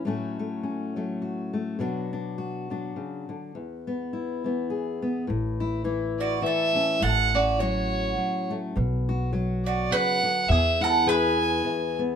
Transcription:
0.05 1.78 A2 medium
0.05 0.96 F#3 soft
0.05 0.38 A3 soft
0.05 0.62 C#4 soft
0.05 1.21 F#4 medium
0.39 0.96 A3 soft
0.63 1.79 C#4 soft
0.96 1.76 F#3 soft
0.96 1.52 A3 soft
1.22 1.77 F#4 soft
1.53 1.79 A3 soft
1.79 2.95 B2 medium
1.79 2.69 F#3 soft
1.79 2.12 D4 medium
1.79 2.37 F#4 soft
2.13 2.70 D4 soft
2.38 3.51 F#4 medium
2.70 3.51 F#3 soft
2.70 3.51 D4 soft
2.96 3.28 C#3 soft
3.29 3.54 D3 soft
3.55 5.28 E2 medium
3.87 4.44 B3 soft
4.13 5.25 E4 soft
4.44 5.83 E3 soft
4.44 5.01 B3 soft
4.70 5.25 G#4 soft
5.02 5.25 B3 soft
5.27 6.41 A1 medium
5.27 6.99 A2 medium
5.60 5.84 E4 medium
5.84 6.41 E3 medium
5.84 6.98 E4 medium
6.19 6.43 F#4 medium
6.19 6.43 D5 medium
6.42 7.01 E3 medium
6.42 7.04 E5 medium
6.46 6.99 A4 medium
6.75 6.98 C#4 medium
7.00 8.14 A1 medium
7.00 8.74 A2 medium
7.00 7.35 A4 medium
7.00 7.37 F#5 medium
7.34 8.75 C#4 medium
7.34 7.59 F#4 medium
7.34 7.61 D5 medium
7.59 8.16 F#3 medium
7.59 8.50 F#4 medium
7.59 8.73 F#4 medium
7.59 8.50 C#5 medium
8.17 8.72 F#3 medium
8.51 8.76 A3 soft
8.76 9.88 B1 medium
8.76 9.91 B2 medium
9.09 9.32 F#4 medium
9.33 10.46 F#3 medium
9.33 10.46 F#4 medium
9.65 9.92 F#4 medium
9.65 9.93 D5 medium
9.91 10.23 C#3 medium
9.91 10.51 B4 medium
9.91 10.50 F#5 medium
10.23 10.49 D3 medium
10.49 12.16 E2 medium
10.49 11.61 E2 medium
10.49 10.84 G#4 medium
10.49 10.83 E5 medium
10.81 12.16 E4 medium
10.81 11.09 A4 medium
10.81 11.09 F#5 medium
11.06 11.64 E3 medium
11.06 12.16 G#4 medium
11.06 11.98 B4 medium
11.06 11.97 G#5 medium
11.65 12.16 E3 medium
11.99 12.16 B3 medium

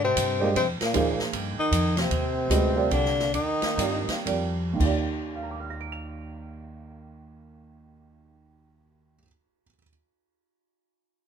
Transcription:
0.00 0.15 G#2 medium
0.00 0.39 C3 medium
0.04 0.39 C4 medium
0.17 0.54 G2 medium
0.17 hi-hat pedal medium
0.17 ride medium
0.40 0.48 A#2 medium
0.40 0.53 G#3 medium
0.40 0.49 A#3 medium
0.40 0.53 D4 medium
0.40 0.54 G4 medium
0.40 0.54 C5 medium
0.40 0.54 D#5 medium
0.55 0.78 F2 medium
0.55 0.66 C3 medium
0.55 0.67 C4 medium
0.55 ride medium
0.80 1.24 A#2 medium
0.80 1.25 A#3 medium
0.80 muted upright bass stroke soft
0.80 snare soft
0.80 ride soft
0.94 1.18 D#2 medium
0.94 1.53 F3 medium
0.94 1.53 A#3 medium
0.94 1.53 D#4 medium
0.94 1.53 G#4 medium
0.94 1.53 C5 medium
0.94 ride medium
1.19 muted upright bass stroke soft
1.19 snare soft
1.33 1.56 G2 medium
1.33 ride medium
1.58 1.98 D#3 medium
1.58 2.00 D#4 medium
1.58 muted upright bass stroke soft
1.71 2.10 F2 medium
1.71 hi-hat pedal medium
1.71 ride medium
1.97 2.90 C3 medium
1.97 2.92 C4 medium
1.97 snare soft
1.97 ride soft
2.11 2.49 D#2 medium
2.11 ride medium
2.50 2.89 D2 medium
2.50 2.73 G#3 soft
2.50 2.73 C#4 soft
2.50 2.73 F#4 soft
2.50 2.74 B4 medium
2.50 2.74 D#5 medium
2.50 hi-hat pedal medium
2.50 ride medium
2.75 3.12 G3 medium
2.75 3.12 C4 medium
2.75 3.12 F4 soft
2.75 3.12 A#4 medium
2.75 3.13 D5 medium
2.91 3.32 C2 medium
2.91 3.30 D3 medium
2.91 3.31 D4 medium
2.91 ride medium
3.05 snare soft
3.19 snare soft
3.33 3.59 D#2 medium
3.33 4.23 D#3 medium
3.33 4.23 D#4 medium
3.33 ride soft
3.62 muted upright bass stroke soft
3.62 snare soft
3.62 ride soft
3.78 4.06 G2 medium
3.78 4.24 G3 medium
3.78 4.24 C4 soft
3.78 4.24 F4 soft
3.78 4.24 A#4 soft
3.78 4.25 D5 medium
3.78 hi-hat pedal soft
3.78 ride medium
4.08 muted upright bass stroke soft
4.08 snare soft
4.08 ride soft
4.25 4.78 F2 medium
4.25 4.79 G3 soft
4.25 4.79 C4 soft
4.25 4.78 F4 soft
4.25 4.79 A#4 soft
4.25 4.80 D5 medium
4.25 ride medium
4.73 9.15 D#2 medium
4.73 9.18 D#3 medium
4.80 9.18 D#2 medium
4.80 9.21 F4 medium
4.80 9.23 G4 medium
4.80 kick soft
4.80 crash medium
4.85 9.27 D5 medium
5.36 9.60 F5 soft
5.43 9.64 A#5 soft
5.51 9.68 D6 soft
5.60 9.73 F6 soft
5.70 9.78 A#6 soft
5.81 9.83 D7 soft
5.92 9.89 F7 soft

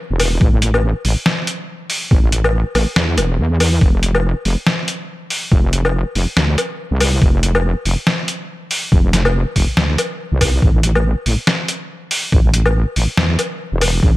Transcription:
0.10 0.40 E1 medium
0.20 open hi-hat medium
0.20 low woodblock medium
0.41 0.94 A1 loud
0.41 kick loud
0.62 closed hi-hat medium
0.74 low woodblock medium
1.05 1.16 A1 medium
1.05 open hi-hat medium
1.26 snare loud
1.47 closed hi-hat medium
1.90 open hi-hat medium
2.11 2.64 A1 loud
2.11 kick loud
2.32 closed hi-hat medium
2.44 low woodblock medium
2.75 2.86 A1 medium
2.75 open hi-hat medium
2.75 low woodblock medium
2.96 3.19 E2 medium
2.96 snare loud
3.18 3.40 E1 medium
3.18 closed hi-hat medium
3.18 low woodblock medium
3.39 3.80 E2 medium
3.60 open hi-hat medium
3.60 low woodblock medium
3.81 4.34 F1 loud
3.81 kick loud
4.03 closed hi-hat medium
4.15 low woodblock medium
4.45 4.56 F1 medium
4.45 open hi-hat medium
4.67 snare loud
4.88 closed hi-hat medium
5.30 open hi-hat medium
5.52 6.05 F1 loud
5.52 kick loud
5.73 closed hi-hat medium
5.85 low woodblock medium
6.15 6.26 F1 medium
6.15 open hi-hat medium
6.37 6.57 D2 medium
6.37 snare loud
6.58 closed hi-hat medium
6.58 low woodblock medium
6.91 7.21 C2 medium
7.00 open hi-hat medium
7.00 low woodblock medium
7.22 7.75 F1 loud
7.22 kick loud
7.43 closed hi-hat medium
7.55 low woodblock medium
7.85 7.97 F1 medium
7.85 open hi-hat medium
8.07 snare loud
8.28 closed hi-hat medium
8.71 open hi-hat loud
8.92 9.45 F1 loud
8.92 kick loud
9.13 snare medium
9.13 closed hi-hat medium
9.25 low woodblock medium
9.56 9.67 F1 medium
9.56 kick medium
9.56 open hi-hat medium
9.77 9.97 D2 medium
9.77 snare loud
9.98 closed hi-hat medium
9.98 low woodblock medium
10.32 10.61 C2 medium
10.41 kick medium
10.41 open hi-hat loud
10.41 low woodblock medium
10.62 11.15 A1 loud
10.62 kick loud
10.83 closed hi-hat medium
10.95 low woodblock medium
11.26 11.37 A1 medium
11.26 open hi-hat medium
11.47 snare loud
11.68 closed hi-hat medium
12.11 open hi-hat loud
12.32 12.85 A1 loud
12.32 kick loud
12.54 closed hi-hat medium
12.66 low woodblock medium
12.96 13.07 A1 medium
12.96 open hi-hat medium
13.17 13.37 E2 medium
13.17 snare loud
13.39 closed hi-hat medium
13.39 low woodblock medium
13.72 14.01 E1 medium
13.81 open hi-hat loud
13.81 low woodblock medium
14.03 14.17 A1 loud
14.03 kick loud

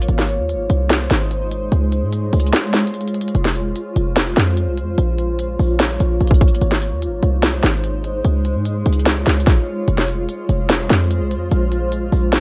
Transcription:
0.02 closed hi-hat medium
0.08 0.41 G#1 loud
0.08 4.94 G#3 medium
0.08 1.70 D#4 medium
0.08 1.70 C5 medium
0.08 closed hi-hat medium
0.19 snare medium
0.29 closed hi-hat medium
0.39 0.56 D#2 loud
0.49 closed hi-hat medium
0.54 0.69 G#1 loud
0.70 1.09 C2 loud
0.70 closed hi-hat medium
0.90 snare loud
0.90 closed hi-hat medium
1.10 1.69 G#1 loud
1.10 snare loud
1.31 closed hi-hat medium
1.51 closed hi-hat medium
1.72 2.04 C#2 loud
1.72 6.57 F4 medium
1.72 3.33 C#5 medium
1.72 closed hi-hat medium
1.92 closed hi-hat medium
2.02 2.31 G#2 loud
2.12 closed hi-hat medium
2.33 2.52 C#2 loud
2.33 closed hi-hat medium
2.33 open hi-hat medium
2.40 closed hi-hat medium
2.47 closed hi-hat soft
2.53 snare loud
2.53 closed hi-hat medium
2.74 snare loud
2.74 closed hi-hat soft
2.80 closed hi-hat medium
2.87 closed hi-hat medium
2.94 closed hi-hat soft
3.01 closed hi-hat medium
3.08 closed hi-hat medium
3.15 closed hi-hat medium
3.21 closed hi-hat medium
3.28 closed hi-hat medium
3.35 3.74 F1 loud
3.35 4.97 C5 medium
3.35 closed hi-hat medium
3.45 snare medium
3.55 closed hi-hat medium
3.76 closed hi-hat medium
3.96 4.35 F1 loud
3.96 closed hi-hat medium
4.17 snare loud
4.17 closed hi-hat medium
4.37 4.69 F2 loud
4.37 snare loud
4.57 closed hi-hat medium
4.68 4.84 C2 loud
4.78 closed hi-hat medium
4.83 4.97 F2 loud
4.98 5.57 A#1 loud
4.98 6.60 A#3 medium
4.98 6.60 C#5 medium
4.98 closed hi-hat medium
5.19 closed hi-hat medium
5.39 closed hi-hat medium
5.59 5.99 A#1 loud
5.59 open hi-hat medium
5.80 snare loud
5.80 closed hi-hat medium
6.00 6.20 A#1 loud
6.00 closed hi-hat medium
6.21 6.60 A#1 loud
6.21 closed hi-hat soft
6.27 kick loud
6.27 closed hi-hat medium
6.34 closed hi-hat medium
6.41 kick loud
6.41 closed hi-hat medium
6.41 open hi-hat soft
6.48 closed hi-hat medium
6.55 closed hi-hat medium
6.61 6.94 G#1 loud
6.61 9.85 G#3 medium
6.61 8.23 D#4 medium
6.61 8.23 C5 medium
6.61 closed hi-hat medium
6.72 snare medium
6.82 closed hi-hat medium
6.92 7.09 D#2 loud
7.02 closed hi-hat medium
7.07 7.22 G#1 loud
7.23 7.62 C2 loud
7.23 closed hi-hat medium
7.43 snare loud
7.43 closed hi-hat medium
7.63 8.22 G#1 loud
7.63 snare loud
7.84 closed hi-hat medium
8.04 closed hi-hat medium
8.25 8.57 C#2 loud
8.25 9.86 F4 medium
8.25 9.86 C#5 medium
8.25 closed hi-hat medium
8.45 closed hi-hat medium
8.55 8.84 G#2 loud
8.66 closed hi-hat medium
8.86 9.25 C#2 loud
8.86 closed hi-hat medium
8.86 open hi-hat medium
8.93 closed hi-hat medium
9.00 closed hi-hat soft
9.06 snare loud
9.06 closed hi-hat medium
9.27 9.46 C#2 loud
9.27 snare loud
9.27 closed hi-hat soft
9.34 closed hi-hat medium
9.40 closed hi-hat medium
9.47 kick loud
9.47 snare medium
9.88 10.27 F1 loud
9.88 11.50 G#3 medium
9.88 12.40 F4 medium
9.88 11.50 C5 medium
9.88 closed hi-hat medium
9.98 snare medium
10.08 closed hi-hat medium
10.29 closed hi-hat medium
10.49 10.88 F1 loud
10.49 closed hi-hat medium
10.70 snare loud
10.70 closed hi-hat medium
10.90 11.22 F2 loud
10.90 snare loud
11.10 closed hi-hat medium
11.21 11.37 C2 loud
11.31 closed hi-hat medium
11.36 11.51 F2 loud
11.51 12.10 A#1 loud
11.51 12.40 A#3 medium
11.51 12.40 C#5 medium
11.51 closed hi-hat medium
11.72 closed hi-hat medium
11.92 closed hi-hat medium
12.12 12.40 A#1 loud
12.12 open hi-hat medium
12.33 snare loud
12.33 closed hi-hat medium

